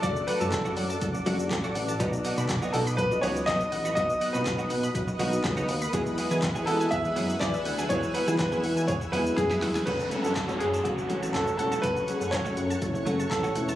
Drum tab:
HH |x-o-x-o-x-o-x-o-|x-o-x-o-x-o-x-o-|x-o-x-o-x-o-x-o-|x-o-x-o-x-o-x-o-|
SH |xxxxxxxxxxxxxxxx|xxxxxxxxxxxxxxxx|xxxxxxxxxxxxxxxx|xxxxxxxxxxxxxxxx|
CP |----x-------x---|----x-------x---|----x-------x---|----x-------x---|
SD |----o-------o---|----o-------o---|----o-------o---|----o-------o---|
BD |o---o---o---o---|o---o---o---o---|o---o---o---o---|o---o---o---o---|

HH |x-o-x-o-x-o-x-o-|x-x-x-x-x-x-x-x-|x-x-x-x-x-x-x-x-|
SH |xxxxxxxxxxxxxxxx|xxxxxxxxxxxxxxxx|xxxxxxxxxxxxxxxx|
CP |----x-----------|----x-------x---|----x-------x---|
SD |----o-------oooo|----o-------o---|----o-------o---|
BD |o---o---o---o---|o---o---o---o---|o---o---o---o---|